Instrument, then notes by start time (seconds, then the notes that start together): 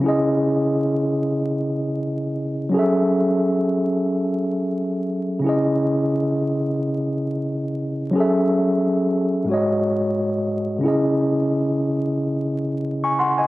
tine electric piano
0.00 C#3 C#4 E4
0.06 G#4 D#5
2.69 F#3 C#4
2.74 G#4 A4
2.79 E5
5.39 C#3 C#4
5.44 E4 G#4
5.49 D#5
8.11 F#3 C#4
8.15 G#4 A4
8.20 E5
9.44 G#2 G#3
9.49 F#4 C#5
9.54 D#5
10.78 C#3 C#4
10.83 E4 G#4
10.88 D#5
13.04 G#5 C#6
13.19 F#5 C6
13.38 D#5 G#5